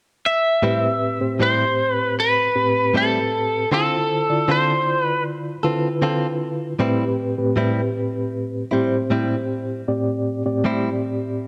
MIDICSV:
0, 0, Header, 1, 4, 480
1, 0, Start_track
1, 0, Key_signature, 0, "minor"
1, 0, Tempo, 770218
1, 395, Time_signature, 4, 2, 24, 8
1, 7152, End_track
2, 0, Start_track
2, 0, Title_t, "Lead electric guitar"
2, 0, Program_c, 0, 29
2, 163, Note_on_c, 0, 76, 82
2, 855, Note_off_c, 0, 76, 0
2, 888, Note_on_c, 0, 72, 78
2, 1200, Note_off_c, 0, 72, 0
2, 1200, Note_on_c, 0, 71, 78
2, 1337, Note_off_c, 0, 71, 0
2, 1370, Note_on_c, 0, 71, 83
2, 1850, Note_off_c, 0, 71, 0
2, 1852, Note_on_c, 0, 69, 80
2, 2299, Note_off_c, 0, 69, 0
2, 2330, Note_on_c, 0, 69, 72
2, 2811, Note_off_c, 0, 69, 0
2, 2813, Note_on_c, 0, 72, 72
2, 3125, Note_off_c, 0, 72, 0
2, 3125, Note_on_c, 0, 71, 72
2, 3260, Note_off_c, 0, 71, 0
2, 7152, End_track
3, 0, Start_track
3, 0, Title_t, "Reed electric piano"
3, 0, Program_c, 1, 4
3, 392, Note_on_c, 1, 45, 74
3, 392, Note_on_c, 1, 60, 69
3, 393, Note_on_c, 1, 67, 67
3, 394, Note_on_c, 1, 71, 78
3, 731, Note_off_c, 1, 45, 0
3, 731, Note_off_c, 1, 60, 0
3, 731, Note_off_c, 1, 67, 0
3, 732, Note_off_c, 1, 71, 0
3, 753, Note_on_c, 1, 60, 54
3, 754, Note_on_c, 1, 72, 65
3, 755, Note_on_c, 1, 67, 49
3, 756, Note_on_c, 1, 45, 59
3, 1537, Note_off_c, 1, 60, 0
3, 1538, Note_off_c, 1, 67, 0
3, 1538, Note_off_c, 1, 72, 0
3, 1539, Note_off_c, 1, 45, 0
3, 1592, Note_on_c, 1, 45, 63
3, 1593, Note_on_c, 1, 60, 58
3, 1594, Note_on_c, 1, 67, 56
3, 1594, Note_on_c, 1, 71, 64
3, 2266, Note_off_c, 1, 45, 0
3, 2266, Note_off_c, 1, 60, 0
3, 2267, Note_off_c, 1, 67, 0
3, 2267, Note_off_c, 1, 71, 0
3, 2315, Note_on_c, 1, 72, 65
3, 2316, Note_on_c, 1, 64, 58
3, 2317, Note_on_c, 1, 50, 59
3, 2317, Note_on_c, 1, 65, 56
3, 2653, Note_off_c, 1, 64, 0
3, 2653, Note_off_c, 1, 72, 0
3, 2654, Note_off_c, 1, 50, 0
3, 2654, Note_off_c, 1, 65, 0
3, 2677, Note_on_c, 1, 50, 57
3, 2677, Note_on_c, 1, 64, 50
3, 2677, Note_on_c, 1, 65, 59
3, 2678, Note_on_c, 1, 74, 67
3, 3460, Note_off_c, 1, 50, 0
3, 3460, Note_off_c, 1, 64, 0
3, 3460, Note_off_c, 1, 65, 0
3, 3460, Note_off_c, 1, 74, 0
3, 3516, Note_on_c, 1, 64, 67
3, 3517, Note_on_c, 1, 50, 78
3, 3517, Note_on_c, 1, 65, 67
3, 3518, Note_on_c, 1, 71, 80
3, 4188, Note_off_c, 1, 64, 0
3, 4189, Note_off_c, 1, 50, 0
3, 4189, Note_off_c, 1, 65, 0
3, 4189, Note_off_c, 1, 71, 0
3, 4235, Note_on_c, 1, 45, 81
3, 4235, Note_on_c, 1, 67, 69
3, 4236, Note_on_c, 1, 60, 68
3, 4237, Note_on_c, 1, 71, 84
3, 4573, Note_off_c, 1, 45, 0
3, 4573, Note_off_c, 1, 60, 0
3, 4573, Note_off_c, 1, 67, 0
3, 4574, Note_off_c, 1, 71, 0
3, 4599, Note_on_c, 1, 60, 67
3, 4600, Note_on_c, 1, 45, 77
3, 4600, Note_on_c, 1, 67, 65
3, 4600, Note_on_c, 1, 71, 80
3, 5381, Note_off_c, 1, 45, 0
3, 5381, Note_off_c, 1, 60, 0
3, 5381, Note_off_c, 1, 67, 0
3, 5381, Note_off_c, 1, 71, 0
3, 5436, Note_on_c, 1, 45, 74
3, 5436, Note_on_c, 1, 67, 71
3, 5436, Note_on_c, 1, 72, 84
3, 5438, Note_on_c, 1, 60, 70
3, 6108, Note_off_c, 1, 45, 0
3, 6108, Note_off_c, 1, 67, 0
3, 6108, Note_off_c, 1, 72, 0
3, 6109, Note_off_c, 1, 60, 0
3, 6155, Note_on_c, 1, 45, 76
3, 6158, Note_on_c, 1, 60, 67
3, 6158, Note_on_c, 1, 67, 67
3, 6158, Note_on_c, 1, 74, 85
3, 6493, Note_off_c, 1, 45, 0
3, 6494, Note_off_c, 1, 60, 0
3, 6494, Note_off_c, 1, 67, 0
3, 6494, Note_off_c, 1, 74, 0
3, 6517, Note_on_c, 1, 60, 66
3, 6517, Note_on_c, 1, 67, 64
3, 6518, Note_on_c, 1, 45, 70
3, 6518, Note_on_c, 1, 74, 79
3, 7152, Note_off_c, 1, 45, 0
3, 7152, Note_off_c, 1, 60, 0
3, 7152, Note_off_c, 1, 67, 0
3, 7152, Note_off_c, 1, 74, 0
3, 7152, End_track
4, 0, Start_track
4, 0, Title_t, "Clean electric guitar"
4, 0, Program_c, 2, 27
4, 389, Note_on_c, 2, 45, 68
4, 394, Note_on_c, 2, 55, 76
4, 398, Note_on_c, 2, 60, 78
4, 400, Note_on_c, 2, 64, 80
4, 538, Note_off_c, 2, 45, 0
4, 540, Note_off_c, 2, 55, 0
4, 542, Note_off_c, 2, 60, 0
4, 543, Note_off_c, 2, 64, 0
4, 870, Note_on_c, 2, 45, 62
4, 874, Note_on_c, 2, 55, 63
4, 876, Note_on_c, 2, 60, 71
4, 881, Note_on_c, 2, 64, 64
4, 1018, Note_off_c, 2, 45, 0
4, 1020, Note_off_c, 2, 55, 0
4, 1022, Note_off_c, 2, 60, 0
4, 1024, Note_off_c, 2, 64, 0
4, 1830, Note_on_c, 2, 45, 64
4, 1837, Note_on_c, 2, 55, 68
4, 1839, Note_on_c, 2, 60, 65
4, 1842, Note_on_c, 2, 64, 75
4, 1979, Note_off_c, 2, 45, 0
4, 1982, Note_off_c, 2, 55, 0
4, 1983, Note_off_c, 2, 60, 0
4, 1985, Note_off_c, 2, 64, 0
4, 2316, Note_on_c, 2, 50, 65
4, 2319, Note_on_c, 2, 60, 71
4, 2325, Note_on_c, 2, 65, 75
4, 2328, Note_on_c, 2, 69, 69
4, 2462, Note_off_c, 2, 50, 0
4, 2463, Note_off_c, 2, 60, 0
4, 2466, Note_off_c, 2, 65, 0
4, 2467, Note_off_c, 2, 69, 0
4, 2793, Note_on_c, 2, 50, 71
4, 2796, Note_on_c, 2, 60, 70
4, 2800, Note_on_c, 2, 65, 69
4, 2802, Note_on_c, 2, 69, 72
4, 2940, Note_off_c, 2, 50, 0
4, 2942, Note_off_c, 2, 60, 0
4, 2944, Note_off_c, 2, 65, 0
4, 2945, Note_off_c, 2, 69, 0
4, 3510, Note_on_c, 2, 69, 47
4, 3518, Note_on_c, 2, 65, 44
4, 3527, Note_on_c, 2, 60, 40
4, 3659, Note_off_c, 2, 69, 0
4, 3663, Note_off_c, 2, 65, 0
4, 3667, Note_off_c, 2, 60, 0
4, 3750, Note_on_c, 2, 50, 70
4, 3753, Note_on_c, 2, 60, 84
4, 3758, Note_on_c, 2, 65, 89
4, 3761, Note_on_c, 2, 69, 86
4, 3899, Note_off_c, 2, 50, 0
4, 3900, Note_off_c, 2, 60, 0
4, 3903, Note_off_c, 2, 65, 0
4, 3904, Note_off_c, 2, 69, 0
4, 4232, Note_on_c, 2, 45, 76
4, 4235, Note_on_c, 2, 55, 69
4, 4240, Note_on_c, 2, 60, 89
4, 4242, Note_on_c, 2, 64, 85
4, 4380, Note_off_c, 2, 45, 0
4, 4381, Note_off_c, 2, 55, 0
4, 4384, Note_off_c, 2, 60, 0
4, 4385, Note_off_c, 2, 64, 0
4, 4712, Note_on_c, 2, 45, 79
4, 4716, Note_on_c, 2, 55, 76
4, 4720, Note_on_c, 2, 60, 79
4, 4722, Note_on_c, 2, 64, 84
4, 4860, Note_off_c, 2, 45, 0
4, 4862, Note_off_c, 2, 55, 0
4, 4864, Note_off_c, 2, 60, 0
4, 4865, Note_off_c, 2, 64, 0
4, 5430, Note_on_c, 2, 64, 50
4, 5440, Note_on_c, 2, 60, 50
4, 5446, Note_on_c, 2, 55, 39
4, 5579, Note_off_c, 2, 64, 0
4, 5584, Note_off_c, 2, 60, 0
4, 5587, Note_off_c, 2, 55, 0
4, 5673, Note_on_c, 2, 45, 76
4, 5679, Note_on_c, 2, 55, 75
4, 5683, Note_on_c, 2, 60, 84
4, 5685, Note_on_c, 2, 64, 78
4, 5821, Note_off_c, 2, 45, 0
4, 5823, Note_off_c, 2, 55, 0
4, 5825, Note_off_c, 2, 60, 0
4, 5826, Note_off_c, 2, 64, 0
4, 6633, Note_on_c, 2, 45, 78
4, 6637, Note_on_c, 2, 55, 73
4, 6640, Note_on_c, 2, 60, 78
4, 6643, Note_on_c, 2, 64, 86
4, 6780, Note_off_c, 2, 45, 0
4, 6782, Note_off_c, 2, 55, 0
4, 6784, Note_off_c, 2, 60, 0
4, 6785, Note_off_c, 2, 64, 0
4, 7152, End_track
0, 0, End_of_file